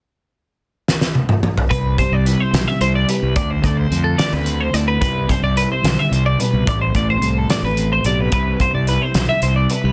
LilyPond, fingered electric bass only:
\new Staff \with { instrumentName = "Fingered electric bass" } { \clef bass \time 6/8 \key c \major \tempo 4. = 73 r2. | c,8 r16 c,8 r16 b,,16 r16 c,8 r16 c,16 | d,8 d,8 f,8 r16 d,8. d,8 | c,8 r16 c,8 r16 b,,16 r16 c,8 r16 c,16 |
a,,8 a,,8 c,8 r16 a,,8. b,,8 | c,8 r16 c,8 r16 b,,16 r16 c,8 r16 c,16 | }